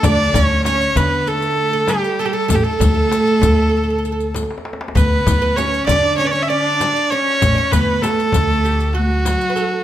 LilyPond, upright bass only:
\new Staff \with { instrumentName = "Upright bass" } { \clef bass \time 4/4 \tempo 4 = 97 d,8 d,4 d2 r8 | a,,16 r16 d,8 r8 d,2 r8 | d,8 d,4 d2 r8 | a,,16 r16 d,8 r8 d,2 r8 | }